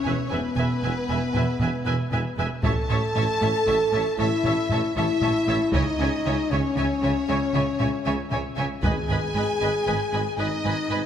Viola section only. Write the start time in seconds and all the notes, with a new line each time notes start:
0.06 B4 E5
0.32 B4 E5
0.58 B4 E5
0.84 B4 E5
1.10 B4 E5
1.36 B4 E5
1.61 B4 E5
1.86 B4 E5
2.12 B4 E5
2.38 B4 E5
2.64 C#5 E5
2.90 C#5 E5
3.15 C#5 E5
3.42 C#5 E5
3.67 C#5 E5
3.93 C#5 E5
4.19 C#5 E5
4.45 C#5 E5
4.71 C#5 E5
4.96 C#5 E5
5.22 C#5 E5
5.48 C#5 E5
5.74 C#5
6.01 C#5
6.26 C#5
6.52 C#5
6.78 C#5
7.03 C#5
7.30 C#5
7.55 C#5
7.80 C#5
8.07 C#5
8.32 C#5
8.58 C#5
8.84 B4 D#5
9.11 B4 D#5
9.36 B4 D#5
9.62 B4 D#5
9.87 B4 D#5
10.13 B4 D#5
10.39 B4 D#5
10.64 B4 D#5
10.90 B4 D#5